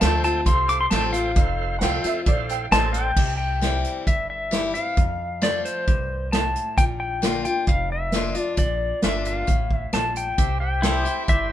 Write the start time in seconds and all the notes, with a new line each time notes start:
Already playing: F2
0.01 D2 F3 A3 C4 F4 A4 C5 G5 A5, snare, closed hi-hat
0.24 C4 F4 A5, closed hi-hat
0.46 C2 C3 A4 C5 F5 C6, kick, closed hi-hat
0.69 D6, closed hi-hat
0.81 C6
0.90 A1 F3 A3 C4 F4 A4 C5 G5 A5, snare, closed hi-hat
1.13 C4 F4 F5, closed hi-hat
1.36 F1 F2 A4 C5 F5, kick, closed hi-hat
1.79 C2 F3 A4 F5 F#5, snare, closed hi-hat
1.83 A3 C4 F4 C5 G5
2.04 C4 F4 E5, muted upright bass stroke, closed hi-hat
2.26 A#1 A2 A4 C5 D5 F5, kick, closed hi-hat
2.49 G5, closed hi-hat
2.71 A1 A#3 A4 C5 D5 D#5 A5 C6, snare, closed hi-hat
2.93 G5, closed hi-hat
3.16 C2 C3, kick, crash
3.37 G5
3.61 E3 G3 C4 E4, snare, closed hi-hat
3.85 closed hi-hat
4.07 G1 G2 E5, kick, closed hi-hat
4.30 E5
4.51 E3 G3 C4 E4, snare, closed hi-hat
4.74 C4 E4 F5, closed hi-hat
4.97 F2, kick, closed hi-hat
5.42 F3 A3 C4 F4 D5, snare, closed hi-hat
5.65 C5, closed hi-hat
5.88 C2 G2, kick, closed hi-hat
6.32 A2 A5, snare, closed hi-hat
6.56 closed hi-hat
6.78 A#1 A#2 G5, kick, closed hi-hat
7.00 G5
7.22 D3 A#3 D4 F4, snare, closed hi-hat
7.45 D4 F4 G5, closed hi-hat
7.67 F1 F2 F5, kick, closed hi-hat
7.92 E5
8.12 D3 A#3 D4 F4, snare, closed hi-hat
8.35 D4 F4, closed hi-hat
8.39 D5
8.57 A#1 A#2 D5, kick, closed hi-hat
9.02 G1 D3 A#3 D4 F4 E5, snare, closed hi-hat
9.25 F5, closed hi-hat
9.47 A1 A2, kick, closed hi-hat
9.71 kick
9.76 E5
9.93 A#1 A#2 A5, snare, closed hi-hat
10.16 G5, closed hi-hat
10.38 C2 C3 G4 C5 E5, kick, closed hi-hat
10.60 G4 C5 E5 G5
10.82 E3 G3 C4 E4 G4 A4 C5 E5, snare, closed hi-hat
11.05 C4 E4 G4, closed hi-hat
11.28 G1 G2 G4 C5 E5, kick, closed hi-hat